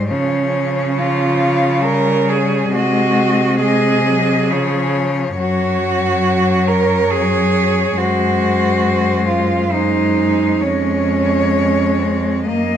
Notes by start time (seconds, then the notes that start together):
Already playing: G#2 G3
0.10 C#3 F3 C#4 C#5
0.97 F3 F4 C#5
1.83 G3 A#4
2.29 G#4
2.73 C3 G#3 F#4 D#5
3.61 G#3 G#4 D#5
4.07 F#3
4.49 C#3 F3 C#5
5.37 F#2 F#3 F#4 C#5
6.67 A#4
7.10 G#4
7.97 F#2 G#3 F#4 C5
9.26 F4
9.71 G#3 D#4 C5
10.60 F2 G#3 C#4 C#5
11.98 C4
12.47 F#2 A#3 D#5